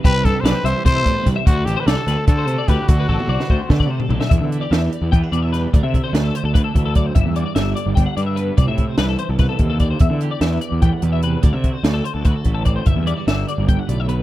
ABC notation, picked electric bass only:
X:1
M:7/8
L:1/16
Q:1/4=147
K:Dmix
V:1 name="Picked electric bass" clef=bass
C,,2 G,, z B,,, z C,, z C,2 A,, z C,, z | D,,2 A,,, z C,, z D,, z D,2 C, z D,, z | D,,2 A,,, z C,, z D,, z D,2 C, z B,,, z | E,, D,2 z E,,2 z E,, E,, z E,,4 |
D,, C,2 z D,,2 z D,, D,, z D,,4 | G,,, E,,2 z G,,,2 z G,,, G,,, z G,,4 | C,, A,,2 z C,,2 z C,, C,, z _E,,4 | E,, D,2 z E,,2 z E,, E,, z E,,4 |
D,, C,2 z D,,2 z D,, D,, z A,,,4 | G,,, E,,2 z G,,,2 z G,,, G,,, z B,,,4 |]